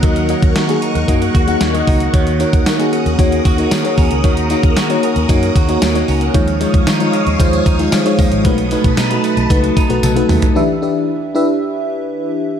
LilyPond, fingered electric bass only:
\new Staff \with { instrumentName = "Fingered electric bass" } { \clef bass \time 4/4 \key ges \major \tempo 4 = 114 ees,8. ees,16 ees8 r16 ees,16 ges,8 ees,8 ees,8 des,8 | ees,8. ees,16 ees8 r16 ees,16 ees,8 ees,8 ees16 r16 ees,16 des,16 | ees,8. ees,16 ees8 r16 ees,16 ges,8 ees,8 ees,8 des,8 | ees,8. ees,16 ees8 r16 ees,16 ees,8 ees,8 ees16 r16 ees,16 aes,,16 |
b,,8. b,,16 b,8 r16 b,,16 des,8 r16 b,,16 b,,8 dis,16 r16 | \key e \minor r1 | }